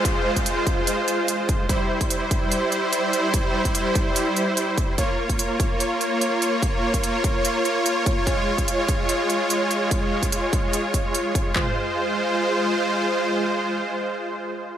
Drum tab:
HH |x--xx-x-x-x-x-x-|x--xx-x-x-x-x-x-|x--xx-x-x-x-x-x-|x--xx-x-x-x-x-x-|
CP |----------------|----------------|----------------|----------------|
FT |----------------|----------------|----------------|----------------|
BD |o--o--o-------o-|o--o--o---------|o--o--o-------o-|o--o--o---------|

HH |x--xx-x-x-x-x-x-|x--xx-x-x-x-x-x-|x--xx-x-x-x-x-x-|----------------|
CP |----------------|----------------|----------------|x---------------|
FT |----------------|----------------|----------------|o---------------|
BD |o--o--o-------o-|o--o--o---------|o--o--o---o---o-|o---------------|

HH |----------------|
CP |----------------|
FT |----------------|
BD |----------------|